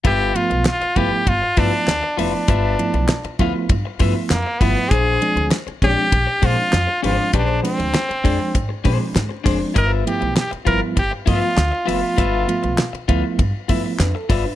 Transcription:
0.04 G1 F4 G4 B4 E5, kick, ride bell
0.35 F3 A3 B3 F4, ride bell
0.50 B1, muted clean electric guitar stroke, ride bell
0.65 F4, snare, clap, ride bell
0.81 muted upright bass stroke, muted clean electric guitar stroke, ride bell
0.96 G1 F3 A3 B3 E4 F4 G4 B4 F5, kick, ride bell
1.12 muted clean electric guitar stroke
1.26 G1 F4, muted clean electric guitar stroke, kick, ride bell
1.42 muted clean electric guitar stroke
1.57 G2 F3 A3 B3 D4 E4 F4 B4 E5, kick, open hi-hat, ride bell
1.73 muted clean electric guitar stroke
1.87 D2, muted clean electric guitar stroke, snare, clap, hi-hat pedal, ride bell
2.03 muted clean electric guitar stroke
2.17 F1 F3 A3 B3 D4 E4 F4 B4 E5, open hi-hat, ride bell
2.33 muted clean electric guitar stroke
2.48 G1 F4 B4 E5, kick, hi-hat pedal, ride bell
2.79 F3 A3 B3 E4, ride bell
2.94 B1, muted clean electric guitar stroke, ride bell
3.08 snare, clap, ride bell
3.24 muted upright bass stroke, muted clean electric guitar stroke, ride bell
3.39 D2 F3 A3 B3 E4 F4 B4 F5, kick, ride bell
3.55 muted clean electric guitar stroke
3.69 G2, muted clean electric guitar stroke, kick, ride bell
3.85 muted clean electric guitar stroke
3.99 G2 F3 A3 B3 E4 F4 B4 E5, kick, open hi-hat, ride bell
4.15 muted clean electric guitar stroke
4.30 F2 A#3, muted clean electric guitar stroke, snare, clap, hi-hat pedal, ride bell
4.46 muted clean electric guitar stroke
4.59 G1 F3 A3 B3 E4 F4 B4 E5, kick, open hi-hat, ride bell
4.76 muted clean electric guitar stroke
4.90 A#1 D4 G#4 C5, kick, hi-hat pedal, ride bell
5.21 F3 G#3 C4 D4, ride bell
5.36 D2, muted clean electric guitar stroke, ride bell
5.51 snare, clap, ride bell
5.67 muted upright bass stroke, muted clean electric guitar stroke, ride bell
5.82 A#1 F3 G#3 C4 D4 G4 G#4 D5, kick, ride bell
5.97 muted clean electric guitar stroke
6.12 A#1, muted clean electric guitar stroke, kick, ride bell
6.27 muted clean electric guitar stroke
6.42 A#2 F3 G#3 C4 D4 F4 G#4 C5, kick, open hi-hat, ride bell
6.57 muted clean electric guitar stroke
6.73 F2, muted clean electric guitar stroke, snare, clap, hi-hat pedal, ride bell
6.87 muted clean electric guitar stroke
7.03 G#1 F3 G#3 C4 D4 F4 G#4 C5, open hi-hat, ride bell
7.18 muted clean electric guitar stroke
7.33 A#1 C#4 D4 G4 B4, kick, hi-hat pedal, ride bell
7.45 D4 G#4 C5
7.63 F3 G#3 C4 D4, open hi-hat, ride bell
7.78 D2, muted clean electric guitar stroke, ride bell
7.94 snare, clap, hi-hat pedal, ride bell
8.09 muted clean electric guitar stroke, muted upright bass stroke, ride bell
8.24 F2 F3 G#3 C4 D4 G#4 D5, kick, open hi-hat, ride bell
8.40 muted clean electric guitar stroke
8.54 G#2, muted clean electric guitar stroke, kick, hi-hat pedal, ride bell
8.69 muted clean electric guitar stroke
8.84 A#2 F3 G#3 C4 D4 G#4 C5, kick, open hi-hat, ride bell
8.99 muted clean electric guitar stroke
9.15 G#2, muted clean electric guitar stroke, snare, clap, hi-hat pedal, ride bell
9.29 muted clean electric guitar stroke
9.44 F1 F3 G#3 C4 D4 G#4 C5, kick, open hi-hat, ride bell
9.59 muted clean electric guitar stroke
9.74 G1 E4 A#4 D#5, kick, hi-hat pedal, ride bell
9.86 F4 B4 E5
10.06 F3 A3 B3 E4 G4, ride bell
10.21 B1, muted clean electric guitar stroke, ride bell
10.36 G4, snare, clap, ride bell
10.51 muted clean electric guitar stroke, muted upright bass stroke, ride bell
10.65 G1 F3 G3 B3 E4 F4 A#4 B4 F5, kick, ride bell
10.80 muted clean electric guitar stroke
10.96 G1 G4, muted clean electric guitar stroke, kick, ride bell
11.11 muted clean electric guitar stroke
11.26 G2 F3 A3 B3 F4 B4 E5, kick, open hi-hat, ride bell
11.41 muted clean electric guitar stroke
11.57 D2, muted clean electric guitar stroke, snare, clap, hi-hat pedal, ride bell
11.72 muted clean electric guitar stroke
11.86 F1 F3 A3 B3 F4 B4 E5, open hi-hat, ride bell
12.01 muted clean electric guitar stroke
12.17 G1 F4 B4 E5, kick, hi-hat pedal, ride bell
12.47 F3 A3 B3 F4, ride bell
12.63 B1, muted clean electric guitar stroke, ride bell
12.78 snare, clap, ride bell
12.93 muted upright bass stroke, muted clean electric guitar stroke, ride bell
13.08 D2 F3 A3 B3 E4 F4 B4 F5, kick, ride bell
13.24 muted clean electric guitar stroke
13.39 G2, muted clean electric guitar stroke, kick, ride bell
13.68 G2 F3 A3 B3 E4 F4 B4 E5, kick, open hi-hat, ride bell
13.84 muted clean electric guitar stroke
13.99 F2 D4 B4, muted clean electric guitar stroke, snare, clap, hi-hat pedal, ride bell
14.15 A4, muted clean electric guitar stroke
14.29 G1 F4 B4 D5 E5, kick, open hi-hat, ride bell
14.45 D4 B4, muted clean electric guitar stroke

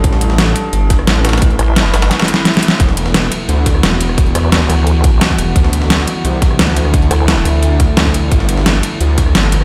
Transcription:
0.04 A1 A3 E4 B4, kick, closed hi-hat
0.13 snare
0.21 closed hi-hat
0.30 snare
0.38 snare, closed hi-hat
0.56 closed hi-hat
0.73 G1, closed hi-hat
0.90 kick, snare, closed hi-hat
0.99 cross-stick
1.07 A1, snare, closed hi-hat
1.16 snare
1.25 snare, closed hi-hat
1.29 snare, closed hi-hat
1.33 cross-stick, snare, closed hi-hat
1.38 snare, closed hi-hat
1.42 kick, closed hi-hat
1.51 closed hi-hat
1.59 A1, cross-stick, closed hi-hat
1.76 snare, closed hi-hat
1.94 G1, cross-stick, snare, closed hi-hat, open hi-hat
2.02 snare, closed hi-hat
2.11 snare, closed hi-hat
2.20 snare, closed hi-hat
2.22 snare
2.28 closed hi-hat
2.34 snare
2.45 snare, closed hi-hat
2.54 snare, closed hi-hat
2.63 closed hi-hat
2.68 snare
2.80 E1 E3 B3 F#4, kick, closed hi-hat
2.88 snare
2.97 closed hi-hat, ride bell
3.06 snare
3.14 snare, closed hi-hat
3.32 closed hi-hat, ride bell
3.49 D2, closed hi-hat
3.66 kick, snare, closed hi-hat, ride bell
3.75 cross-stick
3.83 E1, snare, closed hi-hat
3.92 snare
4.01 closed hi-hat, ride bell
4.09 cross-stick
4.18 kick, closed hi-hat
4.26 closed hi-hat
4.35 E2, cross-stick, closed hi-hat, ride bell
4.52 snare, closed hi-hat
4.70 D2, cross-stick, snare, closed hi-hat, open hi-hat, ride bell
4.87 closed hi-hat
5.04 kick, closed hi-hat, ride bell
5.21 snare, closed hi-hat, open hi-hat
5.30 kick
5.38 E1, closed hi-hat, ride bell
5.56 D2 D3 A3 E4, kick, closed hi-hat
5.64 snare
5.73 closed hi-hat, ride bell
5.82 snare
5.90 snare, closed hi-hat
6.07 closed hi-hat, ride bell
6.25 C2, closed hi-hat
6.42 kick, snare, closed hi-hat, ride bell
6.51 cross-stick
6.59 D2, snare, closed hi-hat
6.68 snare
6.76 closed hi-hat, ride bell
6.85 cross-stick
6.94 kick, closed hi-hat
7.02 closed hi-hat
7.11 D2, cross-stick, closed hi-hat, ride bell
7.28 snare, closed hi-hat
7.45 D2, cross-stick, snare, closed hi-hat, open hi-hat, ride bell
7.63 closed hi-hat
7.80 kick, closed hi-hat, ride bell
7.97 snare, closed hi-hat, open hi-hat
8.06 kick
8.14 closed hi-hat, ride bell
8.32 G1 G3 D4 A4, kick, closed hi-hat
8.40 snare
8.49 closed hi-hat, ride bell
8.57 snare
8.66 snare, closed hi-hat
8.83 closed hi-hat, ride bell
9.01 D2, closed hi-hat
9.18 kick, snare, closed hi-hat, ride bell
9.26 cross-stick
9.35 G1, snare, closed hi-hat
9.44 snare
9.52 closed hi-hat, ride bell
9.61 cross-stick

